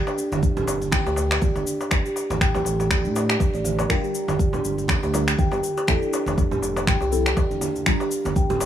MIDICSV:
0, 0, Header, 1, 6, 480
1, 0, Start_track
1, 0, Tempo, 495868
1, 1854, Time_signature, 4, 2, 24, 8
1, 8377, End_track
2, 0, Start_track
2, 0, Title_t, "Kalimba"
2, 0, Program_c, 0, 108
2, 66, Note_on_c, 0, 62, 75
2, 124, Note_off_c, 0, 62, 0
2, 175, Note_on_c, 0, 62, 77
2, 248, Note_off_c, 0, 62, 0
2, 550, Note_on_c, 0, 67, 72
2, 644, Note_off_c, 0, 67, 0
2, 893, Note_on_c, 0, 79, 81
2, 1015, Note_off_c, 0, 79, 0
2, 1028, Note_on_c, 0, 67, 96
2, 1123, Note_off_c, 0, 67, 0
2, 1132, Note_on_c, 0, 70, 74
2, 1255, Note_off_c, 0, 70, 0
2, 1268, Note_on_c, 0, 67, 70
2, 1363, Note_off_c, 0, 67, 0
2, 1376, Note_on_c, 0, 74, 79
2, 1497, Note_off_c, 0, 74, 0
2, 1510, Note_on_c, 0, 62, 69
2, 1566, Note_off_c, 0, 62, 0
2, 1613, Note_on_c, 0, 62, 74
2, 1687, Note_off_c, 0, 62, 0
2, 1990, Note_on_c, 0, 67, 76
2, 2084, Note_off_c, 0, 67, 0
2, 2336, Note_on_c, 0, 79, 76
2, 2457, Note_off_c, 0, 79, 0
2, 2470, Note_on_c, 0, 67, 94
2, 2564, Note_off_c, 0, 67, 0
2, 2575, Note_on_c, 0, 69, 75
2, 2696, Note_off_c, 0, 69, 0
2, 2710, Note_on_c, 0, 67, 72
2, 2804, Note_off_c, 0, 67, 0
2, 2813, Note_on_c, 0, 74, 82
2, 2935, Note_off_c, 0, 74, 0
2, 2949, Note_on_c, 0, 62, 72
2, 3006, Note_off_c, 0, 62, 0
2, 3055, Note_on_c, 0, 74, 73
2, 3176, Note_off_c, 0, 74, 0
2, 3190, Note_on_c, 0, 67, 74
2, 3284, Note_off_c, 0, 67, 0
2, 3432, Note_on_c, 0, 74, 94
2, 3525, Note_off_c, 0, 74, 0
2, 3535, Note_on_c, 0, 72, 72
2, 3656, Note_off_c, 0, 72, 0
2, 3669, Note_on_c, 0, 74, 75
2, 3769, Note_off_c, 0, 74, 0
2, 3771, Note_on_c, 0, 79, 82
2, 3894, Note_off_c, 0, 79, 0
2, 3905, Note_on_c, 0, 67, 101
2, 4001, Note_off_c, 0, 67, 0
2, 4012, Note_on_c, 0, 70, 75
2, 4135, Note_off_c, 0, 70, 0
2, 4149, Note_on_c, 0, 67, 71
2, 4243, Note_off_c, 0, 67, 0
2, 4252, Note_on_c, 0, 74, 76
2, 4375, Note_off_c, 0, 74, 0
2, 4390, Note_on_c, 0, 62, 73
2, 4446, Note_off_c, 0, 62, 0
2, 4495, Note_on_c, 0, 62, 75
2, 4568, Note_off_c, 0, 62, 0
2, 4869, Note_on_c, 0, 67, 73
2, 4963, Note_off_c, 0, 67, 0
2, 5211, Note_on_c, 0, 79, 80
2, 5334, Note_off_c, 0, 79, 0
2, 5345, Note_on_c, 0, 67, 94
2, 5441, Note_off_c, 0, 67, 0
2, 5451, Note_on_c, 0, 70, 72
2, 5574, Note_off_c, 0, 70, 0
2, 5584, Note_on_c, 0, 67, 76
2, 5681, Note_off_c, 0, 67, 0
2, 5689, Note_on_c, 0, 74, 82
2, 5813, Note_off_c, 0, 74, 0
2, 5827, Note_on_c, 0, 62, 77
2, 5885, Note_off_c, 0, 62, 0
2, 5934, Note_on_c, 0, 62, 76
2, 6007, Note_off_c, 0, 62, 0
2, 6309, Note_on_c, 0, 67, 73
2, 6403, Note_off_c, 0, 67, 0
2, 6654, Note_on_c, 0, 79, 80
2, 6776, Note_off_c, 0, 79, 0
2, 6790, Note_on_c, 0, 67, 96
2, 6884, Note_off_c, 0, 67, 0
2, 6897, Note_on_c, 0, 69, 76
2, 7017, Note_off_c, 0, 69, 0
2, 7033, Note_on_c, 0, 67, 72
2, 7125, Note_off_c, 0, 67, 0
2, 7134, Note_on_c, 0, 74, 78
2, 7256, Note_off_c, 0, 74, 0
2, 7269, Note_on_c, 0, 62, 74
2, 7326, Note_off_c, 0, 62, 0
2, 7373, Note_on_c, 0, 62, 72
2, 7447, Note_off_c, 0, 62, 0
2, 7748, Note_on_c, 0, 67, 78
2, 7843, Note_off_c, 0, 67, 0
2, 8092, Note_on_c, 0, 79, 81
2, 8215, Note_off_c, 0, 79, 0
2, 8227, Note_on_c, 0, 67, 94
2, 8322, Note_off_c, 0, 67, 0
2, 8332, Note_on_c, 0, 70, 78
2, 8377, Note_off_c, 0, 70, 0
2, 8377, End_track
3, 0, Start_track
3, 0, Title_t, "Synth stab"
3, 0, Program_c, 1, 62
3, 3770, Note_on_c, 1, 70, 108
3, 3771, Note_on_c, 1, 55, 99
3, 3771, Note_on_c, 1, 62, 88
3, 3771, Note_on_c, 1, 65, 88
3, 4947, Note_off_c, 1, 55, 0
3, 4947, Note_off_c, 1, 62, 0
3, 4947, Note_off_c, 1, 65, 0
3, 4947, Note_off_c, 1, 70, 0
3, 4973, Note_on_c, 1, 55, 74
3, 4973, Note_on_c, 1, 65, 71
3, 4974, Note_on_c, 1, 62, 70
3, 4974, Note_on_c, 1, 70, 83
3, 5668, Note_off_c, 1, 55, 0
3, 5668, Note_off_c, 1, 65, 0
3, 5669, Note_off_c, 1, 62, 0
3, 5669, Note_off_c, 1, 70, 0
3, 5692, Note_on_c, 1, 60, 92
3, 5692, Note_on_c, 1, 64, 88
3, 5693, Note_on_c, 1, 53, 95
3, 5693, Note_on_c, 1, 69, 111
3, 6868, Note_off_c, 1, 53, 0
3, 6868, Note_off_c, 1, 60, 0
3, 6868, Note_off_c, 1, 64, 0
3, 6868, Note_off_c, 1, 69, 0
3, 6890, Note_on_c, 1, 60, 70
3, 6890, Note_on_c, 1, 64, 71
3, 6891, Note_on_c, 1, 53, 75
3, 6891, Note_on_c, 1, 69, 82
3, 7587, Note_off_c, 1, 53, 0
3, 7587, Note_off_c, 1, 60, 0
3, 7587, Note_off_c, 1, 64, 0
3, 7587, Note_off_c, 1, 69, 0
3, 7611, Note_on_c, 1, 70, 108
3, 7612, Note_on_c, 1, 55, 98
3, 7612, Note_on_c, 1, 62, 91
3, 7612, Note_on_c, 1, 65, 89
3, 8377, Note_off_c, 1, 55, 0
3, 8377, Note_off_c, 1, 62, 0
3, 8377, Note_off_c, 1, 65, 0
3, 8377, Note_off_c, 1, 70, 0
3, 8377, End_track
4, 0, Start_track
4, 0, Title_t, "Analog synth bass"
4, 0, Program_c, 2, 38
4, 309, Note_on_c, 2, 31, 94
4, 618, Note_off_c, 2, 31, 0
4, 652, Note_on_c, 2, 31, 91
4, 982, Note_off_c, 2, 31, 0
4, 1028, Note_on_c, 2, 38, 90
4, 1338, Note_off_c, 2, 38, 0
4, 1507, Note_on_c, 2, 31, 98
4, 1591, Note_off_c, 2, 31, 0
4, 1854, Note_on_c, 2, 33, 99
4, 1961, Note_off_c, 2, 33, 0
4, 2229, Note_on_c, 2, 33, 94
4, 2538, Note_off_c, 2, 33, 0
4, 2573, Note_on_c, 2, 33, 95
4, 2948, Note_on_c, 2, 45, 96
4, 2963, Note_off_c, 2, 33, 0
4, 3258, Note_off_c, 2, 45, 0
4, 3427, Note_on_c, 2, 33, 84
4, 3737, Note_off_c, 2, 33, 0
4, 3773, Note_on_c, 2, 31, 97
4, 3880, Note_off_c, 2, 31, 0
4, 4147, Note_on_c, 2, 31, 95
4, 4457, Note_off_c, 2, 31, 0
4, 4494, Note_on_c, 2, 31, 96
4, 4824, Note_off_c, 2, 31, 0
4, 4868, Note_on_c, 2, 38, 95
4, 5178, Note_off_c, 2, 38, 0
4, 5349, Note_on_c, 2, 31, 103
4, 5432, Note_off_c, 2, 31, 0
4, 5694, Note_on_c, 2, 29, 97
4, 5801, Note_off_c, 2, 29, 0
4, 6069, Note_on_c, 2, 29, 95
4, 6378, Note_off_c, 2, 29, 0
4, 6413, Note_on_c, 2, 29, 97
4, 6743, Note_off_c, 2, 29, 0
4, 6787, Note_on_c, 2, 36, 91
4, 7097, Note_off_c, 2, 36, 0
4, 7267, Note_on_c, 2, 29, 97
4, 7351, Note_off_c, 2, 29, 0
4, 7613, Note_on_c, 2, 31, 100
4, 7720, Note_off_c, 2, 31, 0
4, 7990, Note_on_c, 2, 31, 94
4, 8299, Note_off_c, 2, 31, 0
4, 8335, Note_on_c, 2, 31, 95
4, 8377, Note_off_c, 2, 31, 0
4, 8377, End_track
5, 0, Start_track
5, 0, Title_t, "Darbuka"
5, 68, Note_on_c, 9, 63, 94
5, 165, Note_off_c, 9, 63, 0
5, 315, Note_on_c, 9, 63, 65
5, 411, Note_off_c, 9, 63, 0
5, 653, Note_on_c, 9, 63, 93
5, 750, Note_off_c, 9, 63, 0
5, 894, Note_on_c, 9, 63, 60
5, 991, Note_off_c, 9, 63, 0
5, 1032, Note_on_c, 9, 62, 113
5, 1126, Note_off_c, 9, 62, 0
5, 1126, Note_on_c, 9, 62, 110
5, 1223, Note_off_c, 9, 62, 0
5, 1268, Note_on_c, 9, 63, 97
5, 1365, Note_off_c, 9, 63, 0
5, 1506, Note_on_c, 9, 63, 68
5, 1603, Note_off_c, 9, 63, 0
5, 1749, Note_on_c, 9, 62, 91
5, 1846, Note_off_c, 9, 62, 0
5, 1847, Note_on_c, 9, 63, 93
5, 1854, Note_on_c, 9, 62, 83
5, 1944, Note_off_c, 9, 63, 0
5, 1950, Note_off_c, 9, 62, 0
5, 2090, Note_on_c, 9, 63, 67
5, 2186, Note_off_c, 9, 63, 0
5, 2233, Note_on_c, 9, 62, 97
5, 2330, Note_off_c, 9, 62, 0
5, 2464, Note_on_c, 9, 63, 92
5, 2560, Note_off_c, 9, 63, 0
5, 2565, Note_on_c, 9, 62, 80
5, 2662, Note_off_c, 9, 62, 0
5, 2709, Note_on_c, 9, 63, 66
5, 2805, Note_off_c, 9, 63, 0
5, 3061, Note_on_c, 9, 63, 89
5, 3157, Note_off_c, 9, 63, 0
5, 3187, Note_on_c, 9, 62, 108
5, 3284, Note_off_c, 9, 62, 0
5, 3291, Note_on_c, 9, 63, 66
5, 3388, Note_off_c, 9, 63, 0
5, 3665, Note_on_c, 9, 63, 96
5, 3762, Note_off_c, 9, 63, 0
5, 3776, Note_on_c, 9, 63, 67
5, 3873, Note_off_c, 9, 63, 0
5, 4147, Note_on_c, 9, 63, 84
5, 4244, Note_off_c, 9, 63, 0
5, 4387, Note_on_c, 9, 63, 61
5, 4484, Note_off_c, 9, 63, 0
5, 4734, Note_on_c, 9, 63, 81
5, 4831, Note_off_c, 9, 63, 0
5, 4871, Note_on_c, 9, 62, 94
5, 4968, Note_off_c, 9, 62, 0
5, 4972, Note_on_c, 9, 63, 69
5, 4973, Note_on_c, 9, 62, 101
5, 5069, Note_off_c, 9, 63, 0
5, 5070, Note_off_c, 9, 62, 0
5, 5340, Note_on_c, 9, 63, 88
5, 5437, Note_off_c, 9, 63, 0
5, 5591, Note_on_c, 9, 63, 64
5, 5592, Note_on_c, 9, 62, 82
5, 5688, Note_off_c, 9, 63, 0
5, 5689, Note_off_c, 9, 62, 0
5, 5694, Note_on_c, 9, 62, 66
5, 5791, Note_off_c, 9, 62, 0
5, 5938, Note_on_c, 9, 63, 87
5, 6035, Note_off_c, 9, 63, 0
5, 6076, Note_on_c, 9, 62, 98
5, 6173, Note_off_c, 9, 62, 0
5, 6175, Note_on_c, 9, 63, 60
5, 6272, Note_off_c, 9, 63, 0
5, 6412, Note_on_c, 9, 62, 75
5, 6509, Note_off_c, 9, 62, 0
5, 6548, Note_on_c, 9, 63, 88
5, 6645, Note_off_c, 9, 63, 0
5, 6782, Note_on_c, 9, 63, 68
5, 6879, Note_off_c, 9, 63, 0
5, 7027, Note_on_c, 9, 62, 99
5, 7124, Note_off_c, 9, 62, 0
5, 7131, Note_on_c, 9, 63, 91
5, 7228, Note_off_c, 9, 63, 0
5, 7369, Note_on_c, 9, 63, 57
5, 7466, Note_off_c, 9, 63, 0
5, 7746, Note_on_c, 9, 63, 77
5, 7843, Note_off_c, 9, 63, 0
5, 7996, Note_on_c, 9, 63, 66
5, 8092, Note_off_c, 9, 63, 0
5, 8329, Note_on_c, 9, 63, 94
5, 8377, Note_off_c, 9, 63, 0
5, 8377, End_track
6, 0, Start_track
6, 0, Title_t, "Drums"
6, 73, Note_on_c, 9, 69, 27
6, 170, Note_off_c, 9, 69, 0
6, 175, Note_on_c, 9, 69, 95
6, 272, Note_off_c, 9, 69, 0
6, 308, Note_on_c, 9, 62, 41
6, 311, Note_on_c, 9, 69, 40
6, 315, Note_on_c, 9, 63, 102
6, 405, Note_off_c, 9, 62, 0
6, 408, Note_off_c, 9, 69, 0
6, 411, Note_off_c, 9, 63, 0
6, 414, Note_on_c, 9, 36, 113
6, 415, Note_on_c, 9, 69, 54
6, 511, Note_off_c, 9, 36, 0
6, 512, Note_off_c, 9, 69, 0
6, 550, Note_on_c, 9, 64, 106
6, 551, Note_on_c, 9, 69, 26
6, 647, Note_off_c, 9, 64, 0
6, 647, Note_off_c, 9, 69, 0
6, 657, Note_on_c, 9, 69, 94
6, 754, Note_off_c, 9, 69, 0
6, 790, Note_on_c, 9, 62, 49
6, 792, Note_on_c, 9, 69, 40
6, 886, Note_off_c, 9, 62, 0
6, 886, Note_on_c, 9, 64, 103
6, 889, Note_off_c, 9, 69, 0
6, 890, Note_on_c, 9, 63, 116
6, 894, Note_on_c, 9, 26, 94
6, 894, Note_on_c, 9, 36, 122
6, 897, Note_on_c, 9, 69, 52
6, 983, Note_off_c, 9, 64, 0
6, 987, Note_off_c, 9, 63, 0
6, 991, Note_off_c, 9, 26, 0
6, 991, Note_off_c, 9, 36, 0
6, 993, Note_off_c, 9, 69, 0
6, 1031, Note_on_c, 9, 69, 27
6, 1126, Note_on_c, 9, 62, 37
6, 1128, Note_off_c, 9, 69, 0
6, 1135, Note_on_c, 9, 69, 93
6, 1223, Note_off_c, 9, 62, 0
6, 1231, Note_off_c, 9, 69, 0
6, 1268, Note_on_c, 9, 26, 91
6, 1271, Note_on_c, 9, 69, 39
6, 1365, Note_off_c, 9, 26, 0
6, 1367, Note_off_c, 9, 69, 0
6, 1370, Note_on_c, 9, 63, 107
6, 1374, Note_on_c, 9, 36, 119
6, 1374, Note_on_c, 9, 69, 54
6, 1466, Note_off_c, 9, 63, 0
6, 1471, Note_off_c, 9, 36, 0
6, 1471, Note_off_c, 9, 69, 0
6, 1508, Note_on_c, 9, 62, 52
6, 1510, Note_on_c, 9, 63, 62
6, 1510, Note_on_c, 9, 69, 27
6, 1604, Note_off_c, 9, 62, 0
6, 1607, Note_off_c, 9, 63, 0
6, 1607, Note_off_c, 9, 69, 0
6, 1615, Note_on_c, 9, 69, 96
6, 1712, Note_off_c, 9, 69, 0
6, 1750, Note_on_c, 9, 69, 39
6, 1847, Note_off_c, 9, 69, 0
6, 1852, Note_on_c, 9, 26, 89
6, 1854, Note_on_c, 9, 36, 114
6, 1854, Note_on_c, 9, 69, 53
6, 1856, Note_on_c, 9, 62, 51
6, 1948, Note_off_c, 9, 26, 0
6, 1951, Note_off_c, 9, 36, 0
6, 1951, Note_off_c, 9, 69, 0
6, 1953, Note_off_c, 9, 62, 0
6, 1991, Note_on_c, 9, 69, 27
6, 2088, Note_off_c, 9, 69, 0
6, 2096, Note_on_c, 9, 69, 96
6, 2193, Note_off_c, 9, 69, 0
6, 2229, Note_on_c, 9, 63, 116
6, 2232, Note_on_c, 9, 62, 35
6, 2233, Note_on_c, 9, 69, 39
6, 2326, Note_off_c, 9, 63, 0
6, 2329, Note_off_c, 9, 62, 0
6, 2330, Note_off_c, 9, 69, 0
6, 2333, Note_on_c, 9, 36, 114
6, 2333, Note_on_c, 9, 63, 62
6, 2335, Note_on_c, 9, 26, 79
6, 2337, Note_on_c, 9, 69, 51
6, 2430, Note_off_c, 9, 36, 0
6, 2430, Note_off_c, 9, 63, 0
6, 2432, Note_off_c, 9, 26, 0
6, 2434, Note_off_c, 9, 69, 0
6, 2466, Note_on_c, 9, 64, 98
6, 2471, Note_on_c, 9, 69, 26
6, 2563, Note_off_c, 9, 64, 0
6, 2568, Note_off_c, 9, 69, 0
6, 2577, Note_on_c, 9, 69, 92
6, 2673, Note_off_c, 9, 69, 0
6, 2711, Note_on_c, 9, 69, 41
6, 2716, Note_on_c, 9, 62, 45
6, 2808, Note_off_c, 9, 69, 0
6, 2811, Note_on_c, 9, 64, 90
6, 2813, Note_off_c, 9, 62, 0
6, 2813, Note_on_c, 9, 26, 90
6, 2813, Note_on_c, 9, 36, 118
6, 2816, Note_on_c, 9, 69, 53
6, 2908, Note_off_c, 9, 64, 0
6, 2910, Note_off_c, 9, 26, 0
6, 2910, Note_off_c, 9, 36, 0
6, 2912, Note_off_c, 9, 69, 0
6, 2951, Note_on_c, 9, 69, 28
6, 3048, Note_off_c, 9, 69, 0
6, 3054, Note_on_c, 9, 62, 37
6, 3056, Note_on_c, 9, 69, 91
6, 3150, Note_off_c, 9, 62, 0
6, 3153, Note_off_c, 9, 69, 0
6, 3190, Note_on_c, 9, 26, 86
6, 3193, Note_on_c, 9, 69, 38
6, 3287, Note_off_c, 9, 26, 0
6, 3289, Note_off_c, 9, 69, 0
6, 3293, Note_on_c, 9, 36, 120
6, 3296, Note_on_c, 9, 69, 54
6, 3390, Note_off_c, 9, 36, 0
6, 3393, Note_off_c, 9, 69, 0
6, 3422, Note_on_c, 9, 62, 46
6, 3431, Note_on_c, 9, 69, 27
6, 3519, Note_off_c, 9, 62, 0
6, 3528, Note_off_c, 9, 69, 0
6, 3528, Note_on_c, 9, 63, 97
6, 3534, Note_on_c, 9, 69, 93
6, 3625, Note_off_c, 9, 63, 0
6, 3631, Note_off_c, 9, 69, 0
6, 3664, Note_on_c, 9, 63, 72
6, 3670, Note_on_c, 9, 69, 41
6, 3761, Note_off_c, 9, 63, 0
6, 3767, Note_off_c, 9, 69, 0
6, 3773, Note_on_c, 9, 36, 114
6, 3775, Note_on_c, 9, 26, 83
6, 3777, Note_on_c, 9, 62, 52
6, 3777, Note_on_c, 9, 69, 52
6, 3870, Note_off_c, 9, 36, 0
6, 3871, Note_off_c, 9, 26, 0
6, 3874, Note_off_c, 9, 62, 0
6, 3874, Note_off_c, 9, 69, 0
6, 3912, Note_on_c, 9, 69, 26
6, 4009, Note_off_c, 9, 69, 0
6, 4014, Note_on_c, 9, 69, 88
6, 4111, Note_off_c, 9, 69, 0
6, 4145, Note_on_c, 9, 63, 112
6, 4151, Note_on_c, 9, 62, 38
6, 4152, Note_on_c, 9, 69, 39
6, 4241, Note_off_c, 9, 63, 0
6, 4247, Note_off_c, 9, 62, 0
6, 4249, Note_off_c, 9, 69, 0
6, 4254, Note_on_c, 9, 36, 116
6, 4256, Note_on_c, 9, 69, 50
6, 4350, Note_off_c, 9, 36, 0
6, 4353, Note_off_c, 9, 69, 0
6, 4384, Note_on_c, 9, 64, 96
6, 4392, Note_on_c, 9, 69, 26
6, 4481, Note_off_c, 9, 64, 0
6, 4489, Note_off_c, 9, 69, 0
6, 4496, Note_on_c, 9, 69, 91
6, 4593, Note_off_c, 9, 69, 0
6, 4629, Note_on_c, 9, 62, 43
6, 4631, Note_on_c, 9, 69, 40
6, 4725, Note_on_c, 9, 64, 100
6, 4726, Note_off_c, 9, 62, 0
6, 4728, Note_off_c, 9, 69, 0
6, 4733, Note_on_c, 9, 36, 121
6, 4734, Note_on_c, 9, 26, 86
6, 4734, Note_on_c, 9, 63, 101
6, 4736, Note_on_c, 9, 69, 51
6, 4821, Note_off_c, 9, 64, 0
6, 4830, Note_off_c, 9, 36, 0
6, 4831, Note_off_c, 9, 26, 0
6, 4831, Note_off_c, 9, 63, 0
6, 4833, Note_off_c, 9, 69, 0
6, 4871, Note_on_c, 9, 69, 27
6, 4968, Note_off_c, 9, 69, 0
6, 4976, Note_on_c, 9, 62, 41
6, 4977, Note_on_c, 9, 69, 89
6, 5073, Note_off_c, 9, 62, 0
6, 5073, Note_off_c, 9, 69, 0
6, 5109, Note_on_c, 9, 26, 82
6, 5111, Note_on_c, 9, 69, 37
6, 5205, Note_off_c, 9, 26, 0
6, 5208, Note_off_c, 9, 69, 0
6, 5213, Note_on_c, 9, 36, 117
6, 5216, Note_on_c, 9, 63, 109
6, 5216, Note_on_c, 9, 69, 50
6, 5310, Note_off_c, 9, 36, 0
6, 5312, Note_off_c, 9, 69, 0
6, 5313, Note_off_c, 9, 63, 0
6, 5334, Note_on_c, 9, 63, 59
6, 5347, Note_on_c, 9, 62, 47
6, 5352, Note_on_c, 9, 69, 25
6, 5431, Note_off_c, 9, 63, 0
6, 5444, Note_off_c, 9, 62, 0
6, 5448, Note_off_c, 9, 69, 0
6, 5454, Note_on_c, 9, 69, 89
6, 5551, Note_off_c, 9, 69, 0
6, 5589, Note_on_c, 9, 69, 38
6, 5686, Note_off_c, 9, 69, 0
6, 5686, Note_on_c, 9, 62, 50
6, 5693, Note_on_c, 9, 26, 82
6, 5693, Note_on_c, 9, 36, 107
6, 5696, Note_on_c, 9, 69, 49
6, 5783, Note_off_c, 9, 62, 0
6, 5790, Note_off_c, 9, 26, 0
6, 5790, Note_off_c, 9, 36, 0
6, 5792, Note_off_c, 9, 69, 0
6, 5832, Note_on_c, 9, 69, 25
6, 5929, Note_off_c, 9, 69, 0
6, 5934, Note_on_c, 9, 69, 84
6, 6031, Note_off_c, 9, 69, 0
6, 6062, Note_on_c, 9, 63, 108
6, 6069, Note_on_c, 9, 62, 36
6, 6071, Note_on_c, 9, 69, 37
6, 6159, Note_off_c, 9, 63, 0
6, 6166, Note_off_c, 9, 62, 0
6, 6168, Note_off_c, 9, 69, 0
6, 6172, Note_on_c, 9, 63, 61
6, 6173, Note_on_c, 9, 36, 105
6, 6176, Note_on_c, 9, 69, 48
6, 6269, Note_off_c, 9, 63, 0
6, 6270, Note_off_c, 9, 36, 0
6, 6273, Note_off_c, 9, 69, 0
6, 6305, Note_on_c, 9, 64, 101
6, 6312, Note_on_c, 9, 69, 23
6, 6402, Note_off_c, 9, 64, 0
6, 6409, Note_off_c, 9, 69, 0
6, 6417, Note_on_c, 9, 69, 87
6, 6513, Note_off_c, 9, 69, 0
6, 6552, Note_on_c, 9, 62, 49
6, 6552, Note_on_c, 9, 69, 36
6, 6648, Note_off_c, 9, 62, 0
6, 6649, Note_off_c, 9, 69, 0
6, 6653, Note_on_c, 9, 36, 112
6, 6654, Note_on_c, 9, 26, 86
6, 6657, Note_on_c, 9, 69, 51
6, 6658, Note_on_c, 9, 64, 103
6, 6750, Note_off_c, 9, 36, 0
6, 6751, Note_off_c, 9, 26, 0
6, 6753, Note_off_c, 9, 69, 0
6, 6755, Note_off_c, 9, 64, 0
6, 6792, Note_on_c, 9, 69, 26
6, 6889, Note_off_c, 9, 69, 0
6, 6891, Note_on_c, 9, 62, 36
6, 6895, Note_on_c, 9, 69, 85
6, 6988, Note_off_c, 9, 62, 0
6, 6992, Note_off_c, 9, 69, 0
6, 7029, Note_on_c, 9, 26, 81
6, 7032, Note_on_c, 9, 69, 37
6, 7126, Note_off_c, 9, 26, 0
6, 7128, Note_off_c, 9, 69, 0
6, 7133, Note_on_c, 9, 36, 111
6, 7134, Note_on_c, 9, 69, 50
6, 7230, Note_off_c, 9, 36, 0
6, 7231, Note_off_c, 9, 69, 0
6, 7270, Note_on_c, 9, 69, 25
6, 7272, Note_on_c, 9, 62, 56
6, 7367, Note_off_c, 9, 69, 0
6, 7368, Note_on_c, 9, 63, 108
6, 7369, Note_off_c, 9, 62, 0
6, 7373, Note_on_c, 9, 69, 87
6, 7465, Note_off_c, 9, 63, 0
6, 7469, Note_off_c, 9, 69, 0
6, 7509, Note_on_c, 9, 69, 35
6, 7511, Note_on_c, 9, 63, 61
6, 7606, Note_off_c, 9, 69, 0
6, 7608, Note_off_c, 9, 63, 0
6, 7608, Note_on_c, 9, 62, 54
6, 7611, Note_on_c, 9, 26, 86
6, 7613, Note_on_c, 9, 36, 106
6, 7613, Note_on_c, 9, 69, 50
6, 7705, Note_off_c, 9, 62, 0
6, 7708, Note_off_c, 9, 26, 0
6, 7710, Note_off_c, 9, 36, 0
6, 7710, Note_off_c, 9, 69, 0
6, 7750, Note_on_c, 9, 69, 24
6, 7847, Note_off_c, 9, 69, 0
6, 7852, Note_on_c, 9, 69, 85
6, 7949, Note_off_c, 9, 69, 0
6, 7989, Note_on_c, 9, 63, 102
6, 7989, Note_on_c, 9, 69, 37
6, 7993, Note_on_c, 9, 62, 43
6, 8085, Note_off_c, 9, 63, 0
6, 8086, Note_off_c, 9, 69, 0
6, 8089, Note_off_c, 9, 62, 0
6, 8093, Note_on_c, 9, 36, 105
6, 8093, Note_on_c, 9, 69, 48
6, 8190, Note_off_c, 9, 36, 0
6, 8190, Note_off_c, 9, 69, 0
6, 8227, Note_on_c, 9, 69, 24
6, 8228, Note_on_c, 9, 64, 108
6, 8324, Note_off_c, 9, 69, 0
6, 8325, Note_off_c, 9, 64, 0
6, 8332, Note_on_c, 9, 69, 88
6, 8377, Note_off_c, 9, 69, 0
6, 8377, End_track
0, 0, End_of_file